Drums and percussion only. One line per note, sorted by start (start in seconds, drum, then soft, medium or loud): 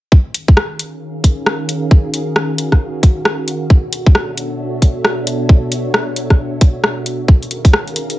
0.12 kick loud
0.34 closed hi-hat loud
0.48 kick loud
0.57 cross-stick loud
0.79 closed hi-hat loud
1.24 kick medium
1.24 closed hi-hat loud
1.46 cross-stick loud
1.69 closed hi-hat loud
1.91 kick loud
2.14 closed hi-hat loud
2.36 cross-stick loud
2.58 closed hi-hat loud
2.72 kick medium
2.72 cross-stick medium
3.03 kick loud
3.03 closed hi-hat loud
3.25 cross-stick loud
3.48 closed hi-hat loud
3.70 kick loud
3.93 closed hi-hat loud
4.06 kick loud
4.15 cross-stick loud
4.37 closed hi-hat medium
4.82 kick medium
4.82 closed hi-hat medium
5.05 cross-stick loud
5.27 closed hi-hat loud
5.49 kick loud
5.72 closed hi-hat medium
5.94 cross-stick loud
6.16 closed hi-hat medium
6.30 kick medium
6.30 cross-stick medium
6.61 kick loud
6.61 closed hi-hat medium
6.84 cross-stick loud
7.06 closed hi-hat medium
7.28 kick loud
7.43 closed hi-hat soft
7.51 closed hi-hat medium
7.65 kick medium
7.65 closed hi-hat medium
7.73 cross-stick loud
7.88 closed hi-hat soft
7.96 closed hi-hat medium
8.10 closed hi-hat medium